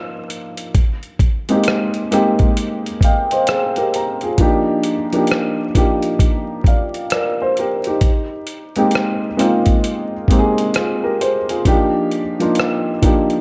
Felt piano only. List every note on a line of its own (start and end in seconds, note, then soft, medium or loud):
0.00 0.76 F3 medium
0.00 0.77 A#3 medium
0.00 0.77 D4 medium
0.00 0.76 D#4 medium
0.00 0.77 F4 medium
1.49 1.99 G#3 medium
1.49 1.99 A#3 medium
1.49 2.00 C4 medium
1.49 2.00 D#4 medium
1.49 2.00 G4 medium
2.11 2.86 G#3 medium
2.11 2.86 A#3 medium
2.11 2.86 C4 medium
2.11 2.87 D#4 medium
2.11 2.87 G4 medium
3.04 3.30 D#5 soft
3.04 3.30 F5 medium
3.04 3.30 G5 medium
3.31 3.47 C5 medium
3.31 3.47 D#5 medium
3.49 3.75 G#4 medium
3.49 3.75 C5 medium
3.49 3.90 G5 medium
3.77 4.20 G4 soft
3.77 4.20 A#4 medium
3.96 4.37 A#5 medium
4.23 4.66 F4 soft
4.23 4.66 G#4 medium
4.39 4.92 F3 medium
4.39 4.93 A#3 medium
4.39 4.93 D4 loud
4.39 4.93 D#4 medium
4.39 4.94 G4 loud
5.12 5.63 F3 medium
5.12 5.63 A#3 medium
5.12 5.63 D4 medium
5.12 5.64 D#4 medium
5.12 5.64 G4 medium
5.75 7.13 F3 medium
5.75 7.14 A#3 medium
5.75 6.66 D4 medium
5.75 6.67 D#4 medium
5.75 6.67 G4 medium
6.67 7.10 D5 soft
6.67 7.10 F5 medium
7.12 7.39 A#4 medium
7.12 7.39 D5 medium
7.42 7.57 C5 medium
7.59 7.85 G4 soft
7.59 7.85 A#4 medium
7.87 8.30 D#4 soft
7.87 8.29 G4 medium
8.76 9.26 G#3 medium
8.76 9.26 A#3 medium
8.76 9.27 C4 medium
8.76 9.27 D#4 medium
8.76 9.27 G4 medium
9.37 10.12 G#3 medium
9.37 10.13 A#3 medium
9.37 10.13 C4 medium
9.37 10.13 D#4 medium
9.37 10.14 F4 medium
10.30 11.36 G#3 medium
10.30 11.37 A#3 medium
10.30 11.37 C4 medium
10.30 11.37 D#4 medium
10.30 10.39 G4 medium
10.39 10.74 G#4 medium
10.76 11.03 F4 medium
10.76 11.02 G#4 medium
11.04 11.20 G4 medium
11.04 11.19 A#4 medium
11.21 11.48 G#4 medium
11.21 11.48 C5 medium
11.50 11.93 F4 soft
11.50 11.93 G#4 medium
11.65 12.19 F3 loud
11.65 12.19 A#3 medium
11.65 12.20 D4 medium
11.65 12.20 D#4 medium
11.65 12.20 G4 loud
12.39 12.90 F3 medium
12.39 12.90 A#3 medium
12.39 12.91 D4 medium
12.39 12.91 D#4 medium
12.39 12.91 F4 medium
13.02 13.41 F3 medium
13.02 13.41 A#3 medium
13.02 13.41 D4 medium
13.02 13.41 D#4 medium
13.02 13.41 G4 medium